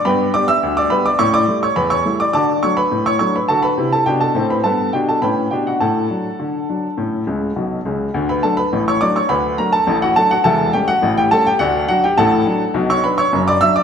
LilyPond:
<<
  \new Staff \with { instrumentName = "Upright piano" } { \time 2/4 \key d \major \tempo 4 = 104 <b' g'' b''>8 <d'' d'''>16 <e'' e'''>8 <d'' d'''>16 <b' b''>16 <d'' d'''>16 | <cis'' cis'''>16 <d'' d'''>8 <cis'' cis'''>16 <b' b''>16 <cis'' cis'''>8 <d'' d'''>16 | <d'' a'' d'''>8 <cis'' cis'''>16 <b' b''>8 <cis'' cis'''>16 <cis'' cis'''>16 <b' b''>16 | <a' a''>16 <b' b''>8 <a' a''>16 <g' g''>16 <a' a''>8 <b' b''>16 |
<a' a''>8 <g' g''>16 <a' a''>16 <b' g'' b''>8 <g' g''>16 <fis' fis''>16 | <a' fis'' a''>2~ | <a' fis'' a''>4. r8 | r16 <b' b''>16 <a' a''>16 <b' b''>8 <cis'' cis'''>16 <d'' d'''>16 <cis'' cis'''>16 |
<b' b''>8 <bes' bes''>16 <a' a''>8 <fis' fis''>16 <a' a''>16 <fis' fis''>16 | <a' e'' a''>8 <g' g''>16 <fis' fis''>8 <g' g''>16 <a' a''>16 <g' g''>16 | <fis' d'' fis''>8 <fis' fis''>16 <g' g''>16 <a' fis'' a''>4 | r16 <cis'' cis'''>16 <b' b''>16 <cis'' cis'''>8 <d'' d'''>16 <e'' e'''>16 <d'' d'''>16 | }
  \new Staff \with { instrumentName = "Upright piano" } { \clef bass \time 2/4 \key d \major <g, b>8 <g b g'>8 d,8 <g b g'>8 | <a, cis'>8 <g a e'>8 e,8 <g a e'>8 | <d fis'>8 <fis a d'>8 a,8 <fis a d'>8 | <d fis'>8 <c e'>8 <b, d'>8 <a, c'>8 |
<g, b>8 <b, d'>8 <a, cis'>8 <b, d'>8 | a,8 <fis d'>8 d8 <fis d'>8 | <a, cis'>8 <cis, cis>8 <b,, b,>8 <cis, cis>8 | <d, d>8 <fis a d'>8 <a,, a,>8 <fis a d'>8 |
<d, d>8 <fis a d'>8 <a,, a,>8 <fis a d'>8 | <e,, e,>8 <g a cis'>8 <a,, a,>8 <g a cis'>8 | <d, d>8 <fis d'>8 <a,, a,>8 <fis d'>8 | <b,, b,>8 <fis d'>8 <fis,, fis,>8 <fis d'>8 | }
>>